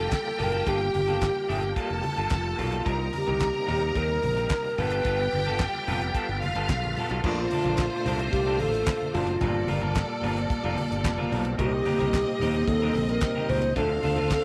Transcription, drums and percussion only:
0.11 kick loud
0.11 snare loud
0.11 clap medium
0.11 closed hi-hat medium
0.11 muted conga soft
0.27 muted conga soft
0.39 open hi-hat medium
0.39 low conga medium
0.52 closed hi-hat medium
0.67 kick loud
0.67 closed hi-hat medium
0.81 muted conga soft
0.94 open hi-hat medium
0.94 high conga medium
1.08 closed hi-hat soft
1.08 high conga medium
1.21 kick loud
1.21 snare loud
1.21 clap loud
1.21 closed hi-hat medium
1.36 muted conga soft
1.50 open hi-hat medium
1.50 low conga medium
1.63 closed hi-hat soft
1.76 kick loud
1.76 closed hi-hat medium
1.91 muted conga soft
2.03 open hi-hat medium
2.03 high conga medium
2.17 closed hi-hat soft
2.30 kick loud
2.30 snare loud
2.30 clap medium
2.30 closed hi-hat medium
2.30 muted conga soft
2.59 open hi-hat medium
2.59 low conga medium
2.72 closed hi-hat medium
2.86 kick loud
2.86 closed hi-hat medium
2.86 muted conga soft
3.13 open hi-hat medium
3.13 high conga medium
3.27 closed hi-hat soft
3.27 high conga medium
3.40 kick loud
3.40 snare loud
3.40 clap medium
3.40 closed hi-hat medium
3.54 muted conga soft
3.68 open hi-hat medium
3.68 low conga medium
3.82 closed hi-hat soft
3.95 kick loud
3.95 closed hi-hat medium
4.09 muted conga soft
4.23 open hi-hat medium
4.23 high conga medium
4.37 closed hi-hat soft
4.49 kick loud
4.49 snare loud
4.49 clap loud
4.49 closed hi-hat medium
4.49 muted conga soft
4.65 muted conga soft
4.78 open hi-hat medium
4.78 low conga medium
4.90 closed hi-hat medium
5.04 kick loud
5.04 closed hi-hat medium
5.20 muted conga soft
5.31 open hi-hat medium
5.31 high conga medium
5.45 closed hi-hat soft
5.45 high conga medium
5.58 kick loud
5.58 snare loud
5.58 clap loud
5.58 closed hi-hat medium
5.58 muted conga soft
5.74 muted conga soft
5.88 open hi-hat medium
5.88 low conga medium
6.01 closed hi-hat soft
6.15 kick loud
6.15 closed hi-hat medium
6.29 muted conga soft
6.42 open hi-hat medium
6.42 high conga medium
6.55 closed hi-hat medium
6.68 kick loud
6.68 snare loud
6.68 clap medium
6.68 closed hi-hat medium
6.84 high conga medium
6.97 open hi-hat medium
6.97 low conga medium
7.09 closed hi-hat medium
7.24 kick loud
7.24 crash loud
7.24 low conga medium
7.51 open hi-hat medium
7.51 high conga medium
7.64 closed hi-hat soft
7.64 high conga medium
7.77 kick loud
7.77 snare loud
7.77 clap medium
7.77 closed hi-hat medium
8.05 open hi-hat medium
8.05 low conga medium
8.19 closed hi-hat soft
8.33 kick loud
8.33 closed hi-hat medium
8.33 muted conga soft
8.60 open hi-hat medium
8.60 high conga medium
8.74 closed hi-hat medium
8.86 kick loud
8.86 snare loud
8.86 clap loud
8.86 closed hi-hat medium
9.01 high conga medium
9.14 open hi-hat medium
9.14 low conga medium
9.27 closed hi-hat medium
9.41 kick loud
9.41 closed hi-hat medium
9.41 muted conga soft
9.41 low conga medium
9.54 muted conga soft
9.67 open hi-hat medium
9.67 high conga medium
9.81 closed hi-hat soft
9.81 high conga medium
9.95 kick loud
9.95 snare loud
9.95 clap loud
9.95 closed hi-hat medium
10.21 open hi-hat medium
10.21 low conga medium
10.37 closed hi-hat medium
10.49 kick loud
10.49 closed hi-hat medium
10.49 muted conga soft
10.76 open hi-hat medium
10.76 high conga medium
10.92 closed hi-hat medium
11.04 kick loud
11.04 snare loud
11.04 clap loud
11.04 closed hi-hat medium
11.04 muted conga soft
11.18 muted conga soft
11.18 high conga medium
11.32 open hi-hat medium
11.32 low conga medium
11.45 closed hi-hat medium
11.59 kick loud
11.59 closed hi-hat medium
11.59 low conga medium
11.85 open hi-hat medium
11.85 high conga medium
11.99 closed hi-hat medium
11.99 high conga medium
12.13 kick loud
12.13 snare loud
12.13 clap loud
12.13 closed hi-hat medium
12.13 muted conga soft
12.39 open hi-hat medium
12.39 low conga medium
12.55 closed hi-hat medium
12.68 kick loud
12.68 closed hi-hat medium
12.68 muted conga soft
12.81 muted conga soft
12.93 open hi-hat medium
12.93 high conga medium
13.09 closed hi-hat medium
13.21 kick loud
13.21 snare loud
13.21 clap loud
13.21 closed hi-hat medium
13.34 high conga medium
13.49 open hi-hat medium
13.49 low conga medium
13.62 closed hi-hat medium
13.76 kick loud
13.76 closed hi-hat medium
13.76 muted conga soft
13.76 low conga medium
13.90 muted conga soft
14.03 open hi-hat medium
14.03 high conga medium
14.16 closed hi-hat soft
14.16 high conga medium
14.30 kick loud
14.30 snare loud
14.30 clap loud
14.30 closed hi-hat medium
14.30 muted conga soft

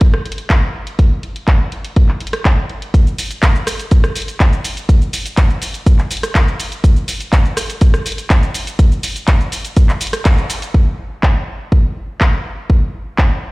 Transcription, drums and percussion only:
0.01 kick loud
0.01 closed hi-hat medium
0.14 cross-stick medium
0.26 closed hi-hat soft
0.32 closed hi-hat medium
0.38 closed hi-hat soft
0.50 kick loud
0.50 clap loud
0.50 closed hi-hat medium
0.87 closed hi-hat soft
0.99 kick loud
0.99 closed hi-hat medium
1.23 closed hi-hat soft
1.36 closed hi-hat soft
1.48 kick loud
1.48 clap loud
1.48 closed hi-hat medium
1.72 closed hi-hat soft
1.85 closed hi-hat soft
1.96 kick loud
1.96 closed hi-hat medium
2.09 clap soft
2.20 closed hi-hat soft
2.27 closed hi-hat medium
2.33 cross-stick medium
2.33 closed hi-hat soft
2.45 kick loud
2.45 clap loud
2.45 closed hi-hat medium
2.70 closed hi-hat soft
2.82 closed hi-hat soft
2.94 kick loud
2.94 closed hi-hat medium
2.94 cabasa soft
3.07 cabasa soft
3.18 open hi-hat loud
3.18 cabasa medium
3.31 closed hi-hat soft
3.31 cabasa soft
3.43 kick loud
3.43 clap loud
3.43 closed hi-hat medium
3.43 cabasa soft
3.56 cabasa soft
3.67 cross-stick medium
3.67 open hi-hat loud
3.67 cabasa medium
3.79 closed hi-hat soft
3.79 cabasa soft
3.91 kick loud
3.91 closed hi-hat medium
3.91 cabasa soft
4.04 cross-stick medium
4.04 cabasa soft
4.16 open hi-hat medium
4.16 cabasa medium
4.22 closed hi-hat medium
4.28 closed hi-hat soft
4.28 cabasa soft
4.40 kick loud
4.40 clap loud
4.40 closed hi-hat medium
4.40 cabasa soft
4.53 cabasa soft
4.64 open hi-hat loud
4.64 cabasa medium
4.77 closed hi-hat soft
4.77 cabasa soft
4.89 kick loud
4.89 closed hi-hat medium
4.89 cabasa soft
5.02 cabasa soft
5.13 open hi-hat loud
5.13 cabasa medium
5.26 closed hi-hat soft
5.26 cabasa soft
5.37 kick loud
5.37 clap loud
5.37 closed hi-hat medium
5.37 cabasa soft
5.50 cabasa soft
5.62 open hi-hat loud
5.62 cabasa medium
5.74 closed hi-hat medium
5.74 cabasa soft
5.86 kick loud
5.86 closed hi-hat medium
5.86 cabasa soft
5.99 clap soft
5.99 cabasa soft
6.11 open hi-hat medium
6.11 cabasa medium
6.17 closed hi-hat medium
6.23 cross-stick medium
6.23 closed hi-hat soft
6.23 cabasa soft
6.35 kick loud
6.35 clap loud
6.35 closed hi-hat medium
6.35 cabasa soft
6.48 cabasa soft
6.60 open hi-hat loud
6.60 cabasa medium
6.72 closed hi-hat medium
6.72 cabasa soft
6.84 kick loud
6.84 closed hi-hat medium
6.84 cabasa soft
6.96 cabasa soft
7.08 open hi-hat loud
7.08 cabasa medium
7.21 closed hi-hat medium
7.21 cabasa soft
7.33 kick loud
7.33 clap loud
7.33 closed hi-hat medium
7.33 cabasa soft
7.45 cabasa soft
7.57 cross-stick medium
7.57 open hi-hat loud
7.57 cabasa medium
7.70 closed hi-hat medium
7.70 cabasa soft
7.81 kick loud
7.81 closed hi-hat medium
7.81 cabasa soft
7.94 cross-stick medium
7.94 cabasa soft
8.06 open hi-hat loud
8.06 cabasa medium
8.12 closed hi-hat medium
8.18 closed hi-hat medium
8.18 cabasa soft
8.30 kick loud
8.30 clap loud
8.30 closed hi-hat medium
8.30 cabasa soft
8.43 cabasa soft
8.54 open hi-hat loud
8.54 cabasa medium
8.67 closed hi-hat medium
8.67 cabasa soft
8.79 kick loud
8.79 closed hi-hat medium
8.79 cabasa soft
8.92 cabasa soft
9.03 open hi-hat loud
9.03 cabasa medium
9.16 closed hi-hat medium
9.16 cabasa soft
9.28 kick loud
9.28 clap loud
9.28 closed hi-hat medium
9.28 cabasa soft
9.40 cabasa soft
9.52 open hi-hat loud
9.52 cabasa medium
9.65 closed hi-hat medium
9.65 cabasa soft
9.77 kick loud
9.77 closed hi-hat medium
9.77 cabasa soft
9.89 clap soft
9.89 cabasa soft
10.01 open hi-hat loud
10.01 cabasa medium
10.07 closed hi-hat medium
10.13 cross-stick medium
10.13 closed hi-hat medium
10.13 cabasa soft
10.25 kick loud
10.25 clap loud
10.25 closed hi-hat medium
10.25 cabasa soft
10.38 cabasa soft
10.50 open hi-hat loud
10.50 cabasa medium
10.62 closed hi-hat medium
10.62 cabasa soft
10.74 kick loud
11.23 kick loud
11.23 clap loud
11.72 kick loud
12.21 kick loud
12.21 clap loud
12.70 kick loud
13.18 kick loud
13.18 clap loud

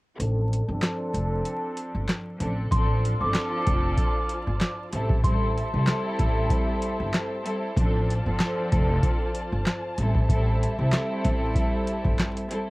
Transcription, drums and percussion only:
0.20 closed hi-hat medium
0.53 closed hi-hat medium
0.82 snare loud
0.82 clap medium
0.82 closed hi-hat medium
1.14 closed hi-hat medium
1.45 closed hi-hat medium
1.77 closed hi-hat medium
2.09 snare loud
2.09 clap medium
2.09 closed hi-hat medium
2.40 closed hi-hat medium
2.71 kick loud
2.71 closed hi-hat loud
3.05 closed hi-hat medium
3.34 snare loud
3.34 clap medium
3.34 closed hi-hat medium
3.67 kick loud
3.67 closed hi-hat medium
3.97 kick loud
3.97 closed hi-hat medium
4.29 closed hi-hat medium
4.61 snare loud
4.61 clap medium
4.61 closed hi-hat medium
4.93 closed hi-hat medium
5.10 kick loud
5.24 kick loud
5.24 closed hi-hat loud
5.58 closed hi-hat medium
5.87 snare loud
5.87 clap medium
5.87 closed hi-hat loud
6.19 kick loud
6.19 snare soft
6.19 closed hi-hat medium
6.50 kick loud
6.50 closed hi-hat medium
6.82 closed hi-hat medium
7.14 snare loud
7.14 clap medium
7.14 closed hi-hat medium
7.46 closed hi-hat medium
7.77 kick loud
7.77 closed hi-hat loud
8.11 closed hi-hat medium
8.40 snare loud
8.40 clap loud
8.40 closed hi-hat medium
8.72 kick loud
8.72 closed hi-hat medium
9.03 kick loud
9.03 closed hi-hat medium
9.35 closed hi-hat medium
9.66 snare loud
9.66 clap medium
9.66 closed hi-hat medium
9.98 closed hi-hat medium
10.15 kick loud
10.29 kick loud
10.29 closed hi-hat loud
10.63 closed hi-hat medium
10.92 snare loud
10.92 clap medium
10.92 closed hi-hat medium
11.24 kick loud
11.24 snare soft
11.24 closed hi-hat medium
11.55 kick loud
11.55 closed hi-hat medium
11.87 closed hi-hat medium
12.05 kick medium
12.19 snare loud
12.19 clap medium
12.19 closed hi-hat medium
12.37 closed hi-hat medium
12.51 closed hi-hat medium

